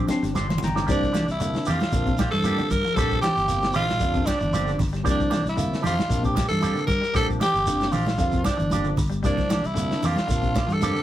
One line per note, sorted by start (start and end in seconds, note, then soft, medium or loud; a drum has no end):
0.00 0.19 F3 medium
0.07 0.32 G3 soft
0.07 0.33 C4 soft
0.07 0.33 D4 medium
0.07 0.22 C6 medium
0.07 muted clean electric guitar stroke soft
0.07 muted fingered electric bass stroke soft
0.07 snare medium
0.07 closed hi-hat medium
0.07 high conga loud
0.07 shekere medium
0.23 0.56 G1 medium
0.23 0.46 G3 medium
0.23 snare soft
0.23 closed hi-hat medium
0.23 shekere soft
0.34 0.48 F3 medium
0.34 0.47 C4 medium
0.34 0.47 D4 medium
0.34 0.47 G4 medium
0.34 0.61 C6 loud
0.34 snare medium
0.34 high conga medium
0.34 shekere medium
0.48 0.72 E3 medium
0.48 muted clean electric guitar stroke soft
0.48 snare medium
0.48 high conga medium
0.48 shekere soft
0.58 0.84 G1 medium
0.58 muted clean electric guitar stroke soft
0.58 low conga medium
0.63 0.87 G5 medium
0.63 0.88 A#5 loud
0.63 snare medium
0.63 shekere medium
0.68 low conga medium
0.74 0.86 D3 medium
0.74 0.86 C4 soft
0.74 0.85 D4 medium
0.74 0.86 G4 medium
0.74 snare medium
0.74 low conga medium
0.74 shekere soft
0.86 1.22 C2 loud
0.86 1.11 C3 medium
0.86 1.11 F3 medium
0.86 1.11 G3 medium
0.86 1.03 A#3 medium
0.86 1.11 A#3 medium
0.86 1.03 D4 medium
0.86 1.11 D4 medium
0.86 1.26 D4 medium
0.86 1.03 G4 medium
0.86 muted clean electric guitar stroke medium
0.86 kick loud
0.86 closed hi-hat medium
0.86 shekere medium
1.02 kick medium
1.02 shekere soft
1.12 1.37 E3 medium
1.12 1.27 F3 medium
1.12 1.26 A#3 medium
1.12 1.26 D4 medium
1.12 1.25 G4 medium
1.12 snare medium
1.12 closed hi-hat soft
1.12 high conga loud
1.12 shekere medium
1.27 1.50 C2 medium
1.27 muted clean electric guitar stroke soft
1.27 snare soft
1.27 closed hi-hat soft
1.27 shekere soft
1.31 1.65 E4 medium
1.39 1.62 C3 medium
1.39 1.64 D3 medium
1.39 1.63 F3 medium
1.39 1.63 A#3 medium
1.39 1.63 D4 medium
1.39 muted clean electric guitar stroke soft
1.39 closed hi-hat medium
1.39 high conga soft
1.39 shekere medium
1.53 muted clean electric guitar stroke soft
1.53 snare medium
1.53 shekere soft
1.65 1.78 F2 medium
1.65 1.89 E3 medium
1.65 1.79 A#3 medium
1.65 1.79 D4 medium
1.65 1.78 G4 loud
1.65 muted clean electric guitar stroke medium
1.65 open hi-hat medium
1.65 low conga medium
1.65 shekere medium
1.69 2.30 F4 loud
1.80 muted clean electric guitar stroke soft
1.80 snare medium
1.80 closed hi-hat soft
1.80 high conga medium
1.80 shekere soft
1.91 2.27 A#1 loud
1.91 2.15 C3 medium
1.91 2.05 D3 medium
1.91 2.15 F3 medium
1.91 2.15 A#3 medium
1.91 2.16 D4 medium
1.91 kick medium
1.91 closed hi-hat medium
1.91 high conga soft
1.91 shekere medium
2.06 2.29 C3 medium
2.06 muted clean electric guitar stroke soft
2.06 kick medium
2.06 closed hi-hat soft
2.06 shekere soft
2.18 2.32 F3 medium
2.18 2.32 A#3 medium
2.18 2.32 D4 medium
2.18 2.31 G4 medium
2.18 kick medium
2.18 snare medium
2.18 closed hi-hat medium
2.18 high conga loud
2.18 shekere medium
2.31 2.55 G2 medium
2.31 2.56 E3 medium
2.31 2.72 A4 loud
2.31 muted clean electric guitar stroke soft
2.31 snare soft
2.31 closed hi-hat soft
2.31 shekere soft
2.43 2.67 C3 medium
2.43 2.67 F3 medium
2.43 2.60 F3 medium
2.43 2.67 A#3 medium
2.43 2.61 A#3 medium
2.43 2.61 D4 medium
2.43 2.68 D4 medium
2.43 2.61 G4 loud
2.43 closed hi-hat medium
2.43 high conga medium
2.43 shekere medium
2.58 2.81 D3 medium
2.58 closed hi-hat soft
2.58 high conga medium
2.58 shekere soft
2.70 2.82 G2 medium
2.70 2.96 A#4 loud
2.70 muted clean electric guitar stroke soft
2.70 kick medium
2.70 closed hi-hat medium
2.70 low conga medium
2.70 shekere medium
2.84 2.96 F3 medium
2.84 muted clean electric guitar stroke soft
2.84 snare soft
2.84 shekere soft
2.95 3.20 A#1 loud
2.95 3.19 C3 medium
2.95 3.19 F3 medium
2.95 3.13 F3 medium
2.95 3.20 G3 medium
2.95 3.20 A#3 medium
2.95 3.13 C4 medium
2.95 3.20 D4 medium
2.95 3.13 D4 medium
2.95 3.13 G4 loud
2.95 3.21 A4 loud
2.95 kick loud
2.95 closed hi-hat medium
2.95 high conga soft
2.95 shekere medium
3.11 kick medium
3.11 shekere soft
3.21 3.46 E3 medium
3.21 3.36 F3 medium
3.21 3.35 C4 medium
3.21 3.35 D4 medium
3.21 3.71 G4 loud
3.21 3.35 G4 medium
3.21 snare medium
3.21 closed hi-hat medium
3.21 high conga loud
3.21 shekere medium
3.36 3.70 G1 medium
3.36 muted clean electric guitar stroke soft
3.36 snare soft
3.36 closed hi-hat soft
3.36 shekere soft
3.47 3.71 C3 medium
3.47 3.71 F3 medium
3.47 3.71 A#3 medium
3.47 3.71 C4 medium
3.47 muted clean electric guitar stroke soft
3.47 closed hi-hat medium
3.47 high conga soft
3.47 shekere medium
3.61 muted clean electric guitar stroke soft
3.61 snare medium
3.61 closed hi-hat soft
3.61 shekere soft
3.73 3.98 A#1 medium
3.73 3.98 E3 medium
3.73 3.88 F3 medium
3.73 3.86 C4 medium
3.73 3.86 D4 medium
3.73 4.27 F4 loud
3.73 3.86 G4 loud
3.73 open hi-hat medium
3.73 low conga medium
3.73 shekere medium
3.87 muted clean electric guitar stroke soft
3.87 snare medium
3.87 high conga medium
3.87 shekere soft
4.00 4.24 F2 loud
4.00 4.23 C3 medium
4.00 4.14 D3 medium
4.00 4.23 F3 medium
4.00 4.24 A#3 medium
4.00 4.24 D4 loud
4.00 kick medium
4.00 closed hi-hat medium
4.00 high conga soft
4.00 shekere medium
4.13 4.38 C3 medium
4.13 muted clean electric guitar stroke soft
4.13 kick medium
4.13 closed hi-hat soft
4.13 shekere soft
4.25 4.40 F3 medium
4.25 4.39 C4 medium
4.25 4.79 D4 medium
4.25 4.39 D4 medium
4.25 4.39 G4 medium
4.25 kick medium
4.25 snare medium
4.25 closed hi-hat medium
4.25 high conga loud
4.25 shekere medium
4.40 4.75 G1 medium
4.40 4.64 E3 medium
4.40 muted clean electric guitar stroke soft
4.40 closed hi-hat soft
4.40 shekere soft
4.52 4.76 C3 medium
4.52 4.69 F3 medium
4.52 4.76 F3 medium
4.52 4.76 A#3 medium
4.52 4.70 C4 medium
4.52 4.70 D4 medium
4.52 4.77 D4 medium
4.52 4.70 G4 medium
4.52 closed hi-hat medium
4.52 high conga medium
4.52 shekere medium
4.66 4.90 D3 medium
4.66 shekere soft
4.78 5.02 G1 loud
4.78 muted clean electric guitar stroke soft
4.78 kick medium
4.78 snare soft
4.78 open hi-hat medium
4.78 low conga medium
4.78 shekere medium
4.92 5.04 G3 medium
4.92 muted clean electric guitar stroke soft
4.92 snare soft
4.92 closed hi-hat soft
4.92 shekere soft
5.03 5.40 C2 loud
5.03 5.28 C3 medium
5.03 5.21 F3 medium
5.03 5.28 F3 medium
5.03 5.29 G3 medium
5.03 5.21 A#3 medium
5.03 5.28 A#3 medium
5.03 5.21 D4 medium
5.03 5.28 D4 medium
5.03 5.21 G4 medium
5.03 kick loud
5.03 closed hi-hat medium
5.03 high conga soft
5.03 shekere medium
5.10 5.45 D4 loud
5.19 kick medium
5.19 shekere soft
5.29 5.55 E3 medium
5.29 5.44 F3 medium
5.29 5.44 A#3 medium
5.29 5.44 D4 medium
5.29 5.43 G4 medium
5.29 snare medium
5.29 closed hi-hat medium
5.29 high conga medium
5.29 shekere medium
5.45 5.68 C2 medium
5.45 muted clean electric guitar stroke medium
5.45 snare soft
5.45 closed hi-hat soft
5.45 shekere soft
5.49 5.83 E4 medium
5.57 5.80 C3 medium
5.57 5.81 D3 medium
5.57 5.81 F3 medium
5.57 5.81 A#3 medium
5.57 5.81 F4 medium
5.57 muted clean electric guitar stroke soft
5.57 closed hi-hat medium
5.57 high conga soft
5.57 shekere medium
5.70 muted clean electric guitar stroke soft
5.70 snare medium
5.70 shekere soft
5.82 5.97 F2 medium
5.82 6.07 E3 medium
5.82 5.97 F3 medium
5.82 5.94 D4 medium
5.82 5.94 G4 loud
5.82 open hi-hat medium
5.82 high conga medium
5.82 low conga medium
5.82 shekere medium
5.86 6.22 F4 loud
5.95 muted clean electric guitar stroke soft
5.95 closed hi-hat soft
5.95 high conga medium
5.95 shekere soft
6.00 snare medium
6.08 6.45 A#1 loud
6.08 6.32 C3 medium
6.08 6.32 F3 medium
6.08 6.33 A#3 medium
6.08 6.33 D4 medium
6.08 muted clean electric guitar stroke medium
6.08 kick medium
6.08 closed hi-hat medium
6.08 high conga soft
6.08 shekere medium
6.22 6.47 C3 medium
6.22 6.48 G4 medium
6.22 muted clean electric guitar stroke soft
6.22 kick medium
6.22 closed hi-hat soft
6.22 shekere soft
6.34 6.49 F3 medium
6.34 6.47 A#3 medium
6.34 6.47 D4 medium
6.34 6.47 G4 medium
6.34 kick medium
6.34 snare medium
6.34 closed hi-hat medium
6.34 high conga loud
6.34 shekere medium
6.48 6.74 G2 medium
6.48 6.73 E3 medium
6.48 6.85 A4 loud
6.48 muted clean electric guitar stroke soft
6.48 closed hi-hat soft
6.48 shekere soft
6.61 6.85 C3 medium
6.61 6.85 F3 medium
6.61 6.78 F3 medium
6.61 6.79 A#3 medium
6.61 6.85 A#3 medium
6.61 6.79 D4 medium
6.61 6.86 D4 medium
6.61 6.79 G4 medium
6.61 closed hi-hat medium
6.61 high conga medium
6.61 shekere medium
6.75 6.99 D3 medium
6.75 closed hi-hat soft
6.75 shekere soft
6.87 7.00 G2 medium
6.87 7.12 A#4 loud
6.87 muted clean electric guitar stroke soft
6.87 kick medium
6.87 closed hi-hat medium
6.87 low conga medium
6.87 shekere medium
7.01 7.13 G3 medium
7.01 muted clean electric guitar stroke soft
7.01 snare soft
7.01 shekere soft
7.13 7.38 A#1 loud
7.13 7.37 C3 medium
7.13 7.38 F3 medium
7.13 7.38 G3 medium
7.13 7.38 A#3 medium
7.13 7.31 C4 medium
7.13 7.31 D4 medium
7.13 7.38 D4 medium
7.13 7.31 G4 medium
7.13 7.27 A4 loud
7.13 muted clean electric guitar stroke medium
7.13 kick loud
7.13 closed hi-hat medium
7.13 high conga soft
7.13 shekere medium
7.28 kick medium
7.28 shekere soft
7.39 7.64 E3 medium
7.39 7.53 C4 medium
7.39 7.53 D4 medium
7.39 7.52 G4 medium
7.39 7.94 G4 loud
7.39 snare medium
7.39 closed hi-hat soft
7.39 high conga loud
7.39 shekere medium
7.54 7.88 G1 medium
7.54 muted clean electric guitar stroke soft
7.54 snare soft
7.54 closed hi-hat soft
7.54 shekere soft
7.66 7.90 C3 medium
7.66 7.90 D3 medium
7.66 7.90 F3 medium
7.66 7.90 A#3 medium
7.66 7.91 D4 medium
7.66 muted clean electric guitar stroke soft
7.66 closed hi-hat medium
7.66 high conga soft
7.66 shekere loud
7.80 muted clean electric guitar stroke soft
7.80 snare medium
7.80 closed hi-hat soft
7.80 shekere soft
7.92 8.16 A#1 medium
7.92 8.16 E3 medium
7.92 8.06 F3 medium
7.92 8.05 C4 medium
7.92 8.05 D4 medium
7.92 8.44 F4 loud
7.92 8.05 G4 medium
7.92 open hi-hat medium
7.92 low conga medium
7.92 shekere medium
8.06 muted clean electric guitar stroke soft
8.06 snare medium
8.06 high conga medium
8.06 shekere soft
8.18 8.42 F2 medium
8.18 8.42 C3 medium
8.18 8.31 D3 medium
8.18 8.43 F3 medium
8.18 8.43 A#3 medium
8.18 8.43 F4 medium
8.18 kick medium
8.18 snare soft
8.18 closed hi-hat medium
8.18 high conga soft
8.18 shekere medium
8.31 8.56 C3 medium
8.31 muted clean electric guitar stroke soft
8.31 kick medium
8.31 closed hi-hat soft
8.31 shekere soft
8.44 8.59 F3 medium
8.44 8.58 C4 medium
8.44 8.58 D4 medium
8.44 8.94 D4 medium
8.44 8.57 G4 medium
8.44 kick medium
8.44 snare medium
8.44 closed hi-hat medium
8.44 high conga loud
8.44 shekere medium
8.57 8.93 G1 medium
8.57 8.82 E3 medium
8.57 muted clean electric guitar stroke soft
8.57 closed hi-hat soft
8.57 shekere soft
8.70 8.95 C3 medium
8.70 8.88 F3 medium
8.70 8.95 F3 medium
8.70 8.95 A#3 medium
8.70 8.88 D4 medium
8.70 8.96 D4 medium
8.70 8.89 G4 loud
8.70 muted clean electric guitar stroke medium
8.70 closed hi-hat medium
8.70 high conga medium
8.70 shekere medium
8.84 9.08 D3 medium
8.84 shekere soft
8.97 9.21 G1 loud
8.97 muted clean electric guitar stroke soft
8.97 kick medium
8.97 open hi-hat medium
8.97 low conga medium
8.97 shekere medium
9.10 9.22 G3 medium
9.10 muted clean electric guitar stroke soft
9.10 closed hi-hat soft
9.10 shekere soft
9.23 9.59 C2 loud
9.23 9.47 C3 medium
9.23 9.47 F3 medium
9.23 9.47 G3 loud
9.23 9.40 A#3 medium
9.23 9.47 A#3 medium
9.23 9.41 D4 medium
9.23 9.48 D4 medium
9.23 9.67 D4 medium
9.23 muted clean electric guitar stroke medium
9.23 kick medium
9.23 closed hi-hat medium
9.23 high conga soft
9.23 shekere medium
9.38 kick medium
9.38 snare soft
9.38 low conga medium
9.38 shekere soft
9.49 9.73 E3 medium
9.49 9.65 F3 medium
9.49 9.64 A#3 medium
9.49 9.64 G4 medium
9.49 muted clean electric guitar stroke medium
9.49 snare medium
9.49 closed hi-hat medium
9.49 high conga loud
9.49 shekere medium
9.64 9.87 C2 medium
9.64 10.07 E4 medium
9.64 muted clean electric guitar stroke soft
9.64 closed hi-hat soft
9.64 shekere soft
9.75 9.99 C3 medium
9.75 9.99 D3 medium
9.75 9.99 F3 medium
9.75 10.00 A#3 medium
9.75 10.00 D4 medium
9.75 muted clean electric guitar stroke soft
9.75 closed hi-hat medium
9.75 high conga soft
9.75 shekere loud
9.91 muted clean electric guitar stroke soft
9.91 snare medium
9.91 shekere soft
10.01 10.15 F2 medium
10.01 10.26 E3 medium
10.01 10.18 F3 medium
10.01 10.16 A#3 medium
10.01 10.16 D4 medium
10.01 10.74 F4 loud
10.01 10.16 G4 medium
10.01 open hi-hat medium
10.01 low conga medium
10.01 shekere medium
10.16 muted clean electric guitar stroke medium
10.16 snare medium
10.16 closed hi-hat soft
10.16 high conga medium
10.16 shekere soft
10.27 10.64 A#1 medium
10.27 10.52 C3 medium
10.27 10.41 D3 medium
10.27 10.52 F3 medium
10.27 10.52 A#3 medium
10.27 10.53 D4 medium
10.27 kick medium
10.27 closed hi-hat medium
10.27 shekere medium
10.41 10.66 C3 medium
10.41 muted clean electric guitar stroke soft
10.41 kick medium
10.41 closed hi-hat soft
10.41 shekere soft
10.55 10.70 F3 medium
10.55 10.69 A#3 medium
10.55 10.68 D4 medium
10.55 kick medium
10.55 snare medium
10.55 closed hi-hat medium
10.55 high conga loud
10.55 shekere medium
10.67 10.92 G2 medium
10.67 10.92 E3 medium
10.67 muted clean electric guitar stroke soft
10.67 snare soft
10.67 closed hi-hat soft
10.67 shekere soft
10.73 11.03 A4 loud
10.81 11.03 C3 medium
10.81 11.03 F3 medium
10.81 10.99 F3 medium
10.81 11.03 A#3 medium
10.81 10.99 A#3 medium
10.81 11.03 D4 medium
10.81 10.99 D4 medium
10.81 10.99 G4 medium
10.81 closed hi-hat medium
10.81 high conga medium
10.81 shekere loud
10.94 11.03 D3 medium
10.94 closed hi-hat soft
10.94 shekere soft